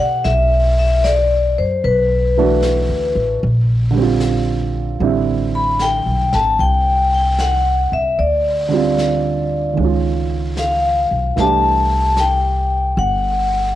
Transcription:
Already playing: E3 A3 D4 G4
0.00 B2 F#5
0.24 B1 E5, brush sweep, snare
0.79 E5
1.04 D5, snare, hi-hat pedal
1.58 F#2 C5
1.83 B1 B4, brush sweep
2.37 E3 A3 D4 F#4
2.62 snare, hi-hat pedal
2.89 D2
3.15 A1
3.41 A#1, brush sweep
3.91 D3 G3
3.98 C4
4.02 F4
4.20 snare, hi-hat pedal
5.00 A1 D3 G3 C4 E4, brush sweep
5.55 B5
5.79 G5, snare, hi-hat pedal
6.06 B1
6.33 G#1 A5, snare
6.59 C2 G5, brush sweep
7.14 G5
7.39 F#5, snare, hi-hat pedal
7.92 C2 E5
8.18 D2 D5, brush sweep
8.69 D3 G3 C4
8.74 F4
8.98 snare, hi-hat pedal
9.73 C#2 D#3 G#3
9.78 C#4, brush sweep
9.85 F4
10.57 F5, snare, hi-hat pedal
11.11 B1
11.36 C2 E3 A3, brush sweep, snare
11.40 D4 G4 A5
12.17 G5, snare, hi-hat pedal
12.97 G1 F#5, brush sweep

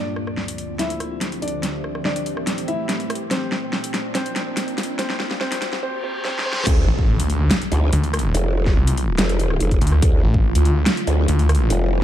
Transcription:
Already playing: D2 D3 F3 C4 D4 F4 D5, riser
0.01 G4
0.07 C5
0.16 cross-stick
0.27 cross-stick
0.37 snare
0.48 closed hi-hat
0.58 E5, closed hi-hat
0.79 E4 E5, snare, closed hi-hat
0.90 closed hi-hat
1.00 cross-stick, closed hi-hat
1.21 snare, closed hi-hat
1.32 closed hi-hat
1.42 D4 D5, closed hi-hat
1.48 closed hi-hat
1.63 A2 E3 A3 C4 G4, snare, closed hi-hat
1.84 cross-stick
1.95 cross-stick
2.05 D4 D5, snare
2.16 closed hi-hat
2.26 closed hi-hat
2.37 cross-stick
2.47 snare, closed hi-hat
2.58 closed hi-hat
2.68 E4 E5, closed hi-hat
2.89 snare, closed hi-hat
3.00 closed hi-hat
3.10 cross-stick, closed hi-hat
3.15 closed hi-hat
3.31 A#2 F3 C4 D4 F4 C5, snare, closed hi-hat
3.46 D5
3.52 A#3, snare
3.73 snare
3.84 closed hi-hat
3.94 snare, closed hi-hat
4.15 C4 C5, snare, closed hi-hat
4.26 closed hi-hat
4.36 snare, closed hi-hat
4.57 snare, closed hi-hat
4.68 closed hi-hat
4.78 snare, closed hi-hat
4.83 closed hi-hat
4.99 C4 C5, snare, closed hi-hat
5.10 snare
5.20 snare
5.31 snare
5.41 C4 C5, snare
5.52 snare, closed hi-hat
5.62 snare, closed hi-hat
5.73 snare
5.83 C4 C5, reverse cymbal
6.04 C4 C5
6.25 C4 C5, snare
6.39 snare
6.46 C4 C5
6.53 snare
6.67 D2 D3 A3 E4 F4, kick, closed hi-hat, crash, impact
6.88 A1
6.99 kick
7.20 D2, closed hi-hat
7.30 closed hi-hat
7.51 snare, closed hi-hat
7.62 closed hi-hat
7.72 D2, closed hi-hat
7.93 D2, closed hi-hat
8.04 closed hi-hat
8.14 cross-stick, closed hi-hat
8.19 closed hi-hat
8.35 F1, closed hi-hat
8.66 kick, snare
8.76 C2
8.87 closed hi-hat
8.97 closed hi-hat
9.18 F1, snare, closed hi-hat
9.29 closed hi-hat
9.39 closed hi-hat
9.50 cross-stick
9.60 F1, closed hi-hat
9.71 kick, closed hi-hat
9.81 D2, closed hi-hat
9.87 closed hi-hat
9.92 cross-stick
10.02 D2, kick, closed hi-hat
10.23 A1
10.34 kick
10.55 D2, closed hi-hat
10.65 closed hi-hat
10.86 snare, closed hi-hat
10.97 closed hi-hat
11.07 D2, closed hi-hat
11.28 D2, closed hi-hat
11.39 closed hi-hat
11.49 cross-stick, closed hi-hat
11.55 closed hi-hat
11.70 F1, closed hi-hat

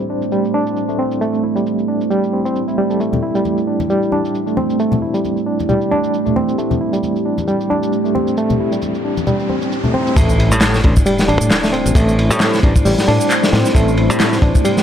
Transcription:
Already playing: G3 A3 C4 D4 E4 C5
0.10 D4
0.22 shaker
0.32 G3, shaker
0.45 shaker
0.54 D4
0.67 shaker
0.76 shaker
0.89 A3, shaker
0.99 C4
1.11 shaker
1.21 A3, shaker
1.34 shaker
1.44 E4
1.56 G3, shaker
1.66 shaker
1.79 shaker
1.88 D4
2.01 shaker
2.11 G3, shaker
2.23 shaker
2.33 C4
2.45 C4, shaker
2.56 shaker
2.68 E4, shaker
2.78 G3
2.90 A4, shaker
3.00 A3 G4, shaker
3.13 high conga, low conga, shaker
3.23 E4
3.35 G3, shaker
3.45 high conga, shaker
3.58 shaker
3.67 D4
3.80 high conga, shaker
3.90 G3, shaker
4.02 shaker
4.12 D4, high conga
4.25 shaker
4.35 shaker
4.47 A3, shaker
4.57 C4, high conga
4.70 shaker
4.80 A3, shaker
4.92 high conga, low conga, shaker
5.02 E4
5.14 G3, shaker
5.24 high conga, shaker
5.37 shaker
5.47 D4
5.59 high conga, shaker
5.69 G3, low conga, shaker
5.81 shaker
5.91 D4, high conga
6.04 shaker
6.14 shaker
6.26 A3, low conga, shaker
6.36 C4, high conga
6.49 shaker
6.58 A3, riser, shaker
6.71 high conga, low conga, shaker
6.81 E4
6.93 G3, shaker
7.03 high conga, shaker
7.16 shaker
7.25 D4
7.38 high conga, shaker
7.48 G3, shaker
7.60 shaker
7.70 D4, high conga
7.83 shaker
7.93 shaker
8.05 A3, shaker
8.15 C4, high conga
8.27 shaker
8.37 A3, shaker
8.50 high conga, low conga, shaker
8.60 E4
8.72 G3, shaker
8.82 high conga, shaker
8.95 shaker
9.05 D4
9.17 high conga, shaker
9.27 G3, low conga, shaker
9.40 shaker
9.49 C4, high conga
9.62 shaker
9.72 shaker
9.84 A3, low conga, shaker
9.94 C4, high conga
10.07 shaker
10.17 A1 A3 E4 C5, kick, ride, sub drop, shaker
10.29 shaker
10.39 E4, ride
10.51 A2 G3, shaker
10.61 snare, clap, ride, shaker
10.74 snare, shaker
10.83 A1 D4, kick, ride
10.96 kick, shaker
11.06 G3, ride, shaker
11.19 snare, shaker
11.28 A1 D4, ride
11.41 A2, shaker
11.51 snare, clap, ride, shaker
11.63 A3, snare, shaker
11.73 C4, ride
11.86 A1, ride, shaker
11.95 A1 A3, kick, ride, shaker
12.08 shaker
12.18 E4, ride
12.30 A2 G3, shaker
12.40 snare, clap, ride, shaker
12.53 snare, shaker
12.63 A1 D4, kick, ride
12.76 kick, shaker
12.85 A1 G3, open hi-hat, shaker
12.98 snare, shaker
13.08 A2 D4, ride
13.21 shaker
13.30 clap, ride, shaker
13.43 A3, snare, shaker
13.53 A2 C4, snare, ride
13.65 snare, shaker
13.75 A1 A3, kick, ride, shaker
13.88 shaker
13.97 E4, ride
14.10 A2 G3, shaker
14.20 snare, clap, ride, shaker
14.32 snare, shaker
14.42 A1 D4, kick, ride
14.55 kick, shaker
14.65 G3, ride, shaker
14.77 snare, shaker

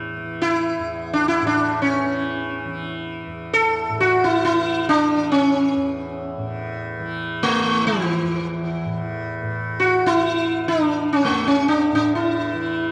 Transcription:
Already playing: E2 A2 E3
0.16 E3
0.41 E4
0.79 E2
1.13 D4
1.28 E4
1.41 A2
1.47 D4
1.82 C#4
2.03 E3
2.66 E3
3.27 E2
3.54 A4
3.89 A2
4.01 F#4
4.24 E4
4.45 E4
4.52 E3
4.89 D4
5.14 E3
5.32 C#4
5.75 E2
6.37 A2
7.00 E3
7.43 A3
7.61 E3
7.87 E3
8.23 E2
8.85 A2
9.42 A2
9.80 F#4
10.03 E3 E4
10.66 E3 D4
11.12 C#4
11.25 A3
11.29 E2
11.48 C#4
11.68 D4
11.92 A2 D4
12.15 E4
12.53 E3

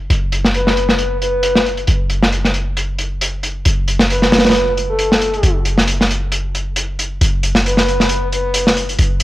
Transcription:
0.00 shaker
0.10 F#1, closed hi-hat
0.32 closed hi-hat
0.45 snare
0.54 B4, closed hi-hat
0.67 snare
0.77 closed hi-hat
0.89 snare
0.98 closed hi-hat
1.21 B4, closed hi-hat
1.43 closed hi-hat
1.55 snare
1.66 closed hi-hat
1.77 closed hi-hat
1.87 F#1, closed hi-hat
2.10 closed hi-hat, shaker
2.23 snare
2.32 closed hi-hat
2.45 snare
2.54 closed hi-hat
2.77 closed hi-hat
2.99 closed hi-hat
3.11 shaker
3.21 closed hi-hat
3.43 closed hi-hat
3.55 shaker
3.65 F#1, closed hi-hat
3.88 closed hi-hat
3.99 snare
4.10 B4, closed hi-hat
4.22 snare
4.32 snare, closed hi-hat
4.38 snare, closed hi-hat
4.44 snare, closed hi-hat
4.50 snare, closed hi-hat
4.54 closed hi-hat
4.77 closed hi-hat, shaker
4.89 A4
4.99 closed hi-hat
5.12 snare
5.22 closed hi-hat
5.34 closed hi-hat
5.43 F#1, closed hi-hat
5.65 closed hi-hat, shaker
5.78 snare
5.88 closed hi-hat
6.01 snare
6.11 closed hi-hat
6.32 closed hi-hat
6.45 shaker
6.55 closed hi-hat
6.67 shaker
6.76 closed hi-hat
6.89 shaker
6.99 closed hi-hat, shaker
7.11 shaker
7.21 F#1, closed hi-hat
7.43 closed hi-hat, shaker
7.55 snare
7.66 B4, closed hi-hat
7.77 snare
7.88 closed hi-hat, shaker
8.00 snare
8.09 closed hi-hat
8.32 B4, closed hi-hat
8.54 closed hi-hat
8.67 snare
8.77 closed hi-hat
8.89 closed hi-hat, shaker
8.99 F#1, closed hi-hat
9.20 closed hi-hat

